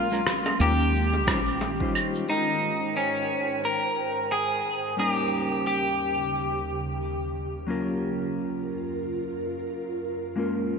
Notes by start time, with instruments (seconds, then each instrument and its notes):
Already playing: fretless electric bass A#1, ambient pad G#3 A#3 C#4, clean electric guitar F4
0.11 clean electric guitar G#3 A#3 C#4 F4 A#4, cabasa
0.27 cross-stick, cabasa
0.46 high bongo, claves
0.60 fretless electric bass D#2, clean electric guitar G#3 A#3 C#4 F4 G4 A#4, cabasa
0.80 cabasa
0.94 ambient pad D#3 F4 G4, cabasa
1.13 high bongo
1.27 fretless electric bass A#1, clean electric guitar G3 C#4 D#4 F4 C5, kick, cross-stick, cabasa
1.47 cabasa
1.61 high bongo, cabasa
1.80 clean electric guitar G3 C#4 D#4 F4 C5, kick
1.95 cabasa, claves
2.15 cabasa
2.28 ambient pad G#2 A#4 C5 G5, clean electric guitar G#3 D#4 G5
2.32 clean electric guitar A#4
2.97 clean electric guitar C#4
3.65 clean electric guitar A#4
4.32 clean electric guitar G#4
4.97 ambient pad D#2 C#3 G4, clean electric guitar G3 A#3 C#4 D#4 G#4 A#4
5.11 clean electric guitar G4
5.67 clean electric guitar G4
7.67 ambient pad F#2 F4 A#4, clean electric guitar F#3 A#3 C#4 F4 A#4
10.36 ambient pad A#2 G#3 C#5, clean electric guitar G#3 A#3 C#4 F4 A#4